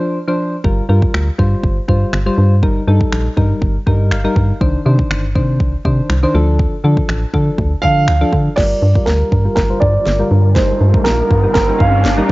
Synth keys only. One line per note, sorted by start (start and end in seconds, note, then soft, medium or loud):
0.00 0.18 F3 medium
0.00 0.19 D4 medium
0.00 0.19 C5 medium
0.28 0.56 F3 medium
0.28 0.56 D4 medium
0.28 0.56 C5 loud
0.64 0.83 G3 medium
0.64 0.84 F4 medium
0.64 0.84 A#4 medium
0.89 1.28 G3 medium
0.89 1.28 F4 medium
0.89 1.28 A#4 loud
1.38 1.77 G3 medium
1.38 1.77 F4 medium
1.38 1.77 C5 medium
1.88 2.17 G3 medium
1.88 2.17 F4 medium
1.88 2.17 C5 medium
2.26 2.54 G3 medium
2.26 2.54 F4 medium
2.26 2.55 C5 loud
2.63 2.82 G3 medium
2.63 2.82 D#4 medium
2.63 2.82 A#4 medium
2.87 3.26 G3 medium
2.87 3.26 D#4 medium
2.87 3.26 A4 loud
3.37 3.76 G3 medium
3.37 3.76 D#4 medium
3.37 3.76 A#4 medium
3.86 4.15 G3 medium
3.86 4.15 D#4 medium
3.86 4.15 A#4 loud
4.11 4.57 F5 medium
4.24 4.53 G3 medium
4.24 4.53 D#4 medium
4.24 4.53 A#4 medium
4.61 4.80 D#3 medium
4.61 4.80 D4 medium
4.61 4.80 C5 loud
4.85 5.24 D#3 medium
4.85 5.24 D4 medium
4.85 5.25 C5 loud
5.35 5.74 D#3 medium
5.35 5.74 D4 medium
5.35 5.74 C5 medium
5.85 6.14 D#3 medium
5.85 6.14 D4 medium
5.85 6.14 C5 loud
6.23 6.34 D#3 medium
6.23 6.33 D4 medium
6.23 6.35 C5 loud
6.34 6.75 F3 medium
6.34 6.75 D4 medium
6.34 6.75 A4 loud
6.84 7.23 F3 medium
6.84 7.23 D4 medium
6.84 7.23 A4 loud
7.33 7.72 F3 medium
7.33 7.72 D4 medium
7.33 7.72 A4 medium
7.83 8.12 F3 medium
7.83 8.12 D4 medium
7.83 8.12 A4 medium
8.21 8.49 F3 medium
8.21 8.50 D4 medium
8.21 8.50 A4 medium
8.57 8.86 G3 medium
8.57 8.86 F4 medium
8.57 8.86 A#4 medium
8.95 9.33 G3 medium
8.95 9.33 F4 medium
8.95 9.33 A#4 medium
9.45 9.64 G3 medium
9.45 9.64 F4 medium
9.45 9.64 A#4 medium
9.70 10.07 G3 medium
9.70 10.07 F4 medium
9.70 10.07 C5 medium
10.19 10.48 G3 medium
10.19 10.48 F4 medium
10.19 10.48 A#4 medium
10.56 10.85 G3 medium
10.56 10.85 D#4 medium
10.56 10.85 A#4 medium
10.94 11.31 G3 medium
10.94 11.31 D#4 medium
10.94 11.31 A#4 medium
11.43 11.62 G3 medium
11.43 11.62 D#4 medium
11.43 11.62 A#4 medium
11.68 12.05 G3 medium
11.68 12.06 D#4 medium
11.68 12.06 A#4 medium
12.18 12.32 G3 medium
12.18 12.32 D#4 medium
12.18 12.32 A#4 medium